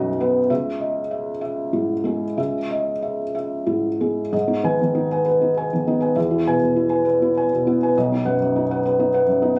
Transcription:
0.00 0.46 B1 medium
0.00 0.39 F#2 soft
0.00 0.20 B3 medium
0.00 0.52 D#4 medium
0.00 0.39 F#4 medium
0.00 0.21 B4 medium
0.00 0.52 D#5 medium
0.00 0.50 E5 soft
0.00 0.52 F#5 medium
0.20 0.50 B3 medium
0.20 0.50 B4 medium
0.50 2.34 C#2 medium
0.50 0.99 E5 medium
0.80 1.29 D#5 soft
1.11 1.40 E5 soft
1.41 1.92 E5 medium
1.73 2.24 G#2 soft
1.73 2.25 E4 soft
2.04 2.57 G#3 soft
2.04 2.58 G#4 soft
2.37 4.29 C#2 soft
2.37 2.90 E5 soft
2.71 3.23 D#5 soft
3.02 3.33 E5 soft
3.35 3.88 E5 soft
3.66 4.20 G#2 soft
3.66 4.20 E4 soft
4.00 4.33 G#3 soft
4.00 4.33 G#4 soft
4.33 6.13 G#2 medium
4.33 4.58 D#5 soft
4.48 4.73 D#4 soft
4.64 4.79 D#3 soft
4.64 4.78 B4 soft
4.64 4.79 G#5 medium
4.81 5.05 D#3 medium
4.95 5.20 D#4 soft
5.11 5.24 B4 soft
5.11 5.26 G#5 soft
5.26 5.51 B4 soft
5.41 5.66 D#4 soft
5.57 5.71 B4 soft
5.57 5.71 G#5 medium
5.73 5.97 D#3 soft
5.87 6.17 B3 soft
5.87 6.11 D#4 medium
6.00 6.15 B4 soft
6.00 6.15 G#5 soft
6.16 7.90 E2 medium
6.16 6.40 E5 medium
6.31 6.55 E4 soft
6.47 6.58 B2 soft
6.47 6.61 B4 soft
6.47 6.61 G#5 medium
6.60 6.85 B2 medium
6.76 7.00 E4 medium
6.89 7.03 B4 soft
6.89 7.04 G#5 soft
7.05 7.30 B4 medium
7.22 7.46 E4 medium
7.37 7.50 B4 soft
7.37 7.50 G#5 medium
7.53 7.75 B2 medium
7.67 7.95 B3 medium
7.67 7.89 E4 medium
7.83 7.95 B4 soft
7.83 7.95 G#5 soft
7.97 9.59 B1 medium
7.97 8.19 D#5 medium
8.12 8.34 D#4 soft
8.25 8.38 F#2 medium
8.25 8.38 B4 medium
8.25 8.38 F#5 medium
8.40 8.63 F#2 medium
8.56 8.78 D#4 medium
8.71 8.83 B4 soft
8.71 8.83 F#5 medium
8.85 9.08 B4 medium
9.00 9.22 D#4 medium
9.14 9.26 B4 medium
9.14 9.27 F#5 medium
9.28 9.51 F#2 medium
9.42 9.59 B3 medium
9.42 9.59 D#4 medium

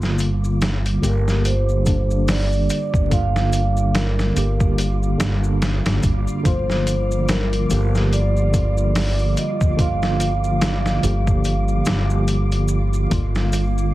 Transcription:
0.00 1.00 G1 loud
0.00 0.98 D3 loud
0.00 0.99 G3 medium
0.00 13.13 G3 medium
0.00 0.99 A#3 medium
0.00 1.00 F4 loud
0.00 13.94 F4 medium
0.00 13.94 D6 medium
0.00 snare soft
0.00 maracas soft
0.19 closed hi-hat medium
0.19 maracas medium
0.44 maracas soft
0.61 snare loud
0.61 closed hi-hat medium
0.61 maracas soft
0.85 closed hi-hat soft
0.85 maracas soft
1.02 2.66 G1 medium
1.02 1.82 D3 medium
1.02 1.83 G3 medium
1.02 1.83 A#3 medium
1.02 1.83 G4 loud
1.02 1.47 A#4 medium
1.02 closed hi-hat medium
1.02 maracas loud
1.28 snare soft
1.28 maracas soft
1.45 2.31 C5 medium
1.45 closed hi-hat medium
1.45 maracas soft
1.69 maracas soft
1.85 3.06 D3 medium
1.85 3.07 G3 medium
1.85 3.07 A#3 medium
1.85 3.08 D4 medium
1.85 kick medium
1.85 closed hi-hat medium
1.85 maracas medium
2.11 maracas soft
2.28 3.15 D5 medium
2.28 snare loud
2.28 open hi-hat medium
2.28 maracas medium
2.52 maracas soft
2.70 closed hi-hat medium
2.70 maracas loud
2.94 4.33 G1 medium
2.94 kick medium
2.94 maracas soft
3.10 4.31 D3 loud
3.10 4.32 G3 medium
3.10 4.33 A#3 medium
3.10 4.33 F4 loud
3.10 3.98 F5 loud
3.10 kick loud
3.10 closed hi-hat medium
3.10 maracas soft
3.36 snare soft
3.36 maracas soft
3.53 closed hi-hat medium
3.53 maracas medium
3.77 maracas soft
3.95 4.74 A#4 medium
3.95 snare loud
3.95 closed hi-hat medium
3.95 maracas soft
4.19 snare soft
4.19 maracas soft
4.36 5.16 G1 medium
4.36 5.16 D3 medium
4.36 5.16 G3 medium
4.36 5.17 A#3 medium
4.36 5.17 G4 medium
4.36 closed hi-hat medium
4.36 maracas medium
4.60 kick medium
4.60 maracas soft
4.78 closed hi-hat medium
4.78 maracas medium
5.03 maracas soft
5.18 5.81 G1 loud
5.18 6.40 D3 medium
5.18 6.40 G3 medium
5.18 6.41 A#3 medium
5.18 6.42 D4 medium
5.18 snare loud
5.18 closed hi-hat medium
5.18 maracas medium
5.44 maracas soft
5.62 snare loud
5.62 closed hi-hat medium
5.62 maracas medium
5.86 6.01 G1 loud
5.86 snare loud
5.86 closed hi-hat medium
5.86 maracas soft
6.03 6.24 G1 medium
6.03 kick medium
6.03 closed hi-hat medium
6.03 maracas medium
6.27 maracas soft
6.43 7.67 G1 loud
6.43 7.65 D3 loud
6.43 7.65 F3 medium
6.43 7.66 A#3 medium
6.43 7.67 F4 loud
6.43 7.31 C5 loud
6.43 kick loud
6.43 closed hi-hat medium
6.43 maracas medium
6.70 snare soft
6.70 maracas soft
6.87 closed hi-hat medium
6.87 maracas medium
7.11 maracas soft
7.28 snare loud
7.28 closed hi-hat medium
7.28 maracas medium
7.53 closed hi-hat soft
7.53 maracas soft
7.69 9.33 G1 loud
7.69 8.49 D3 medium
7.69 8.50 F3 medium
7.69 8.50 A#3 medium
7.69 8.50 G4 loud
7.69 closed hi-hat medium
7.69 maracas loud
7.95 snare soft
7.95 maracas soft
8.12 9.33 D5 loud
8.12 closed hi-hat medium
8.12 maracas medium
8.37 maracas soft
8.52 9.73 D3 medium
8.52 9.74 F3 medium
8.52 9.75 A#3 medium
8.52 9.75 F4 medium
8.52 kick medium
8.52 closed hi-hat medium
8.52 maracas medium
8.78 maracas soft
8.95 snare loud
8.95 open hi-hat medium
8.95 maracas medium
9.19 maracas soft
9.37 9.80 D#5 loud
9.37 closed hi-hat medium
9.37 maracas medium
9.61 11.00 G1 medium
9.61 kick medium
9.61 maracas soft
9.77 10.98 D3 loud
9.77 10.99 F3 medium
9.77 10.99 A#3 medium
9.77 11.00 F4 loud
9.77 12.25 F5 loud
9.77 kick loud
9.77 closed hi-hat medium
9.77 maracas soft
10.02 snare soft
10.02 maracas soft
10.20 closed hi-hat medium
10.20 maracas medium
10.44 maracas soft
10.62 snare loud
10.62 closed hi-hat medium
10.62 maracas medium
10.86 snare soft
10.86 maracas soft
11.03 11.83 G1 loud
11.03 11.83 D3 medium
11.03 11.83 F3 medium
11.03 11.83 A#3 medium
11.03 11.84 G4 loud
11.03 closed hi-hat medium
11.03 maracas medium
11.27 kick medium
11.27 maracas soft
11.44 closed hi-hat medium
11.44 maracas medium
11.68 maracas soft
11.85 13.08 G1 medium
11.85 snare loud
11.85 closed hi-hat medium
11.85 maracas medium
12.08 13.06 D3 medium
12.08 13.07 F3 medium
12.08 13.07 A#3 medium
12.08 13.08 G4 medium
12.08 maracas soft
12.28 closed hi-hat medium
12.28 maracas medium
12.52 closed hi-hat soft
12.52 maracas soft
12.68 maracas medium
12.93 maracas soft
13.10 13.94 G1 loud
13.10 13.94 D3 loud
13.10 13.94 G3 medium
13.10 13.94 A#3 medium
13.10 13.94 F4 loud
13.10 kick loud
13.10 closed hi-hat medium
13.10 maracas soft
13.35 snare soft
13.35 maracas soft
13.53 closed hi-hat medium
13.53 maracas loud
13.78 maracas soft

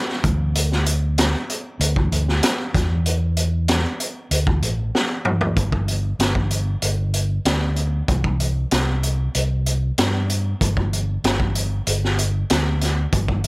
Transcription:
0.09 snare soft
0.24 1.34 D2 loud
0.24 kick loud
0.24 closed hi-hat medium
0.55 closed hi-hat medium
0.72 snare soft
0.86 closed hi-hat medium
1.18 snare loud
1.18 closed hi-hat loud
1.50 closed hi-hat medium
1.80 2.08 D2 loud
1.80 closed hi-hat medium
1.96 kick medium
2.12 2.39 D2 medium
2.12 closed hi-hat medium
2.28 snare soft
2.43 snare loud
2.43 closed hi-hat loud
2.75 3.84 E2 medium
2.75 kick medium
2.75 snare soft
2.75 closed hi-hat medium
3.06 closed hi-hat medium
3.37 closed hi-hat medium
3.68 snare loud
3.68 closed hi-hat loud
4.00 closed hi-hat medium
4.31 4.63 D2 medium
4.31 closed hi-hat medium
4.47 kick medium
4.62 4.90 A1 medium
4.62 closed hi-hat medium
4.95 snare medium
5.25 mid tom medium
5.41 floor tom medium
5.57 6.12 G1 medium
5.57 kick loud
5.57 closed hi-hat medium
5.72 kick medium
5.88 closed hi-hat medium
6.19 6.75 G1 medium
6.19 snare loud
6.19 closed hi-hat medium
6.35 kick medium
6.50 closed hi-hat medium
6.82 7.38 G1 medium
6.82 closed hi-hat medium
7.14 closed hi-hat medium
7.45 8.01 D2 medium
7.45 snare loud
7.45 closed hi-hat medium
7.76 closed hi-hat medium
8.08 8.64 C2 medium
8.08 kick medium
8.08 closed hi-hat medium
8.24 kick medium
8.40 closed hi-hat medium
8.71 9.27 C2 medium
8.71 snare loud
8.71 closed hi-hat medium
9.03 closed hi-hat medium
9.35 9.90 C2 medium
9.35 closed hi-hat medium
9.66 closed hi-hat medium
9.98 10.53 G2 medium
9.98 snare loud
9.98 closed hi-hat medium
10.30 closed hi-hat medium
10.61 11.16 G1 medium
10.61 kick loud
10.61 closed hi-hat medium
10.77 kick medium
10.93 closed hi-hat medium
11.24 11.79 G1 medium
11.24 snare loud
11.24 closed hi-hat medium
11.40 kick medium
11.55 closed hi-hat medium
11.87 12.42 G1 loud
11.87 closed hi-hat medium
12.04 snare soft
12.19 closed hi-hat medium
12.50 13.05 D2 medium
12.50 snare loud
12.50 closed hi-hat medium
12.81 snare soft
12.81 closed hi-hat medium
13.12 13.47 G1 loud
13.12 kick loud
13.12 closed hi-hat medium
13.28 kick medium
13.44 closed hi-hat medium

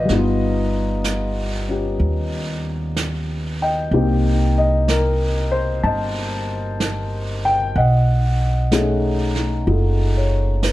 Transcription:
0.00 0.10 F4 medium
0.00 0.10 G4 soft
0.00 1.66 B4 medium
0.00 0.11 C5 medium
0.00 0.11 D5 medium
0.00 1.66 D#5 medium
0.05 1.96 G1 medium
0.05 3.90 G3 soft
0.05 3.92 B3 soft
0.05 brush sweep soft
0.05 snare soft
0.12 3.92 D#4 soft
0.17 1.68 F4 medium
1.04 brush sweep soft
1.04 snare soft
1.04 hi-hat pedal medium
1.68 3.92 C#4 soft
1.68 3.93 F4 soft
1.68 3.93 G4 soft
2.00 3.88 D#2 medium
2.00 brush sweep soft
2.97 brush sweep soft
2.97 snare soft
2.97 hi-hat pedal soft
3.62 4.57 D#5 medium
3.62 4.60 G5 medium
3.91 5.80 C2 medium
3.91 7.76 A#3 soft
3.91 7.76 C4 soft
3.91 7.76 D#4 soft
3.91 7.77 G4 medium
3.91 brush sweep soft
4.58 4.90 D#5 medium
4.88 5.55 A#4 medium
4.88 brush sweep soft
4.88 snare soft
4.88 hi-hat pedal soft
5.52 5.85 C5 medium
5.83 7.72 G1 medium
5.83 7.73 D#5 medium
5.83 6.76 A5 medium
5.83 brush sweep soft
6.80 brush sweep soft
6.80 snare soft
6.80 hi-hat pedal medium
7.45 7.77 G5 medium
7.75 9.63 B1 medium
7.75 9.64 D#5 medium
7.75 8.68 F#5 medium
7.75 brush sweep soft
8.71 10.72 A3 medium
8.71 10.72 C#4 soft
8.71 9.66 D#4 soft
8.71 10.72 G#4 medium
8.71 brush sweep soft
8.71 snare soft
8.71 hi-hat pedal soft
9.36 snare soft
9.67 10.72 F#1 medium
9.67 10.72 D#4 soft
9.67 10.72 F4 soft
9.67 10.72 A4 soft
9.67 brush sweep soft
10.17 10.72 C#5 soft
10.63 10.72 B4 soft
10.63 brush sweep soft
10.63 snare soft
10.63 hi-hat pedal medium

